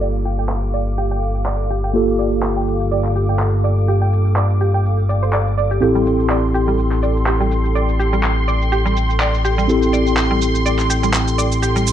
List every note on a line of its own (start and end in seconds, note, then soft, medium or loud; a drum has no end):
0.00 5.80 G1 medium
0.00 1.92 A#3 medium
0.00 1.92 F4 medium
0.00 1.92 G4 medium
0.00 1.93 A4 medium
0.00 11.93 A4 medium
0.00 0.09 D5 medium
0.00 5.78 F5 medium
0.00 5.83 D6 medium
0.00 downlifter medium
0.00 shaker soft
0.15 shaker soft
0.25 0.30 G4 medium
0.25 shaker medium
0.39 0.45 G5 medium
0.39 shaker soft
0.49 clap loud
0.49 shaker soft
0.74 0.81 D5 medium
0.74 shaker medium
0.88 shaker soft
0.98 1.02 G4 medium
0.98 shaker soft
1.11 1.17 G5 medium
1.11 shaker soft
1.23 shaker medium
1.36 shaker soft
1.46 1.54 D5 medium
1.46 clap loud
1.46 shaker soft
1.60 shaker soft
1.70 1.75 G4 medium
1.70 shaker medium
1.84 1.90 G5 medium
1.84 shaker soft
1.94 5.79 A#3 medium
1.94 5.79 F4 medium
1.94 5.79 G4 medium
1.94 5.80 A4 medium
1.94 shaker soft
2.09 shaker soft
2.19 2.26 D5 medium
2.19 shaker medium
2.33 shaker soft
2.43 2.48 G4 medium
2.43 clap loud
2.43 shaker soft
2.57 2.63 G5 medium
2.68 shaker medium
2.81 shaker soft
2.91 2.99 D5 medium
2.91 shaker soft
3.04 clap soft
3.04 shaker soft
3.16 3.20 G4 medium
3.16 shaker medium
3.29 3.35 G5 medium
3.29 shaker soft
3.39 clap loud
3.39 shaker soft
3.54 shaker soft
3.64 3.72 D5 medium
3.64 shaker medium
3.78 shaker soft
3.88 3.93 G4 medium
3.88 shaker soft
4.02 4.08 G5 medium
4.02 shaker soft
4.13 shaker medium
4.26 shaker soft
4.36 4.44 D5 medium
4.36 clap loud
4.36 shaker soft
4.50 shaker soft
4.61 4.65 G4 medium
4.61 shaker medium
4.74 4.80 G5 medium
4.74 shaker soft
4.85 shaker soft
4.99 shaker soft
5.09 5.21 D5 medium
5.09 shaker medium
5.23 5.29 C5 medium
5.23 shaker soft
5.33 5.38 D5 loud
5.33 clap loud
5.33 shaker soft
5.47 shaker soft
5.58 5.69 D5 medium
5.58 shaker medium
5.71 5.75 G4 medium
5.71 shaker soft
5.81 11.93 A1 medium
5.81 9.66 C4 medium
5.81 9.66 E4 medium
5.81 5.86 G4 medium
5.81 9.66 G4 medium
5.81 9.67 A4 medium
5.81 11.93 G5 medium
5.81 11.93 C6 medium
5.81 shaker soft
5.95 5.99 G3 medium
5.95 shaker soft
6.06 shaker medium
6.20 shaker soft
6.30 6.38 D5 medium
6.30 clap loud
6.30 shaker soft
6.54 6.59 G4 medium
6.54 shaker medium
6.68 6.71 G3 medium
6.68 shaker soft
6.79 shaker soft
6.92 clap soft
6.92 shaker soft
7.03 7.10 D5 medium
7.03 shaker medium
7.17 shaker soft
7.26 7.31 G4 medium
7.26 clap loud
7.26 shaker soft
7.40 7.44 G3 medium
7.40 shaker soft
7.52 shaker medium
7.65 shaker soft
7.75 7.83 D5 medium
7.75 shaker soft
7.89 shaker soft
8.00 8.04 G4 medium
8.00 shaker medium
8.13 8.17 G3 medium
8.13 shaker soft
8.23 clap loud
8.23 shaker soft
8.48 8.55 D5 medium
8.48 shaker medium
8.62 shaker soft
8.72 8.77 G4 medium
8.72 shaker soft
8.86 8.89 G3 medium
8.86 shaker soft
8.97 shaker medium
9.10 shaker soft
9.20 9.28 D5 medium
9.20 clap loud
9.20 shaker soft
9.34 shaker soft
9.45 9.49 G4 medium
9.45 shaker medium
9.58 9.62 G3 medium
9.58 shaker soft
9.68 11.93 C4 medium
9.68 11.93 E4 medium
9.68 11.93 G4 medium
9.68 11.93 A4 medium
9.68 shaker soft
9.83 shaker soft
9.93 10.01 D5 medium
9.93 shaker medium
10.07 shaker soft
10.17 10.22 G4 medium
10.17 clap loud
10.17 shaker soft
10.31 10.34 G3 medium
10.42 shaker medium
10.55 shaker soft
10.66 10.73 D5 medium
10.66 shaker soft
10.79 clap soft
10.79 shaker soft
10.90 10.94 G4 medium
10.90 shaker medium
11.03 11.07 G3 medium
11.03 shaker soft
11.14 clap loud
11.14 shaker soft
11.28 shaker soft
11.38 11.46 D5 medium
11.38 shaker medium
11.52 shaker soft
11.62 11.67 G4 medium
11.62 shaker soft
11.76 11.80 G3 medium
11.76 shaker soft
11.87 shaker medium